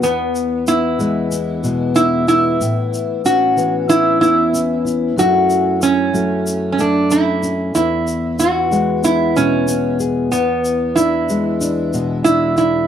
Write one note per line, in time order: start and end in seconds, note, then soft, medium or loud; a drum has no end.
0.00 2.60 E2 medium
0.00 0.98 E3 medium
0.00 0.67 B3 medium
0.00 0.63 B3 medium
0.00 shaker medium
0.35 shaker medium
0.67 1.31 B3 medium
0.67 1.94 E4 loud
0.67 shaker medium
0.99 3.56 E3 medium
0.99 1.63 G#3 medium
0.99 shaker medium
1.31 1.96 B3 medium
1.31 shaker medium
1.63 2.56 B2 medium
1.63 2.57 G#3 medium
1.63 shaker medium
1.96 2.27 B3 medium
1.96 2.27 E4 loud
1.96 shaker medium
2.28 3.25 B3 medium
2.28 3.21 E4 loud
2.28 shaker medium
2.61 4.22 A2 medium
2.61 shaker medium
2.94 shaker medium
3.25 3.89 C#4 medium
3.25 3.92 F#4 loud
3.25 shaker medium
3.57 5.17 E3 medium
3.57 4.20 B3 medium
3.57 shaker medium
3.89 4.52 C#4 medium
3.89 4.20 E4 loud
3.89 shaker medium
4.20 5.16 E2 medium
4.20 5.14 B3 medium
4.20 4.82 E4 medium
4.20 shaker medium
4.53 5.14 C#4 medium
4.53 shaker medium
4.85 5.19 E4 medium
4.85 shaker medium
5.16 7.71 F#2 medium
5.16 6.12 F#3 medium
5.16 6.13 A3 medium
5.16 5.81 C#4 medium
5.16 10.00 E4 medium
5.16 5.85 F#4 loud
5.16 shaker medium
5.50 shaker medium
5.82 6.47 C#4 medium
5.82 6.71 C#4 medium
5.82 shaker loud
6.13 7.71 F#3 medium
6.13 6.77 A3 medium
6.13 shaker medium
6.47 shaker loud
6.72 6.79 C#4 medium
6.79 7.72 A3 medium
6.79 7.13 D4 medium
6.79 shaker medium
7.10 7.42 C#4 medium
7.10 7.72 E4 loud
7.10 shaker loud
7.43 7.72 C#4 medium
7.43 shaker medium
7.75 10.30 E2 medium
7.75 8.39 E4 medium
7.75 shaker loud
8.07 shaker medium
8.39 9.04 B3 medium
8.39 9.04 F#4 loud
8.39 shaker loud
8.71 11.01 E3 medium
8.71 9.36 G#3 medium
8.71 shaker medium
9.04 9.69 B3 medium
9.04 9.37 E4 loud
9.04 shaker loud
9.36 10.29 B2 medium
9.36 10.29 G#3 medium
9.36 9.97 C#4 medium
9.36 shaker medium
9.68 10.97 B3 medium
9.68 shaker loud
10.00 10.29 G#4 medium
10.00 shaker medium
10.32 12.87 E2 medium
10.32 10.98 B3 medium
10.32 shaker medium
10.65 shaker medium
10.95 11.59 D4 medium
10.95 12.21 E4 medium
10.95 shaker loud
11.29 12.87 E3 medium
11.29 11.93 G#3 medium
11.29 shaker medium
11.61 12.24 D4 medium
11.61 shaker medium
11.93 12.86 B2 medium
11.93 12.86 G#3 medium
11.93 shaker medium
12.24 12.56 D4 medium
12.24 12.56 E4 loud
12.24 shaker medium
12.57 12.86 D4 medium
12.57 12.87 E4 loud
12.57 shaker medium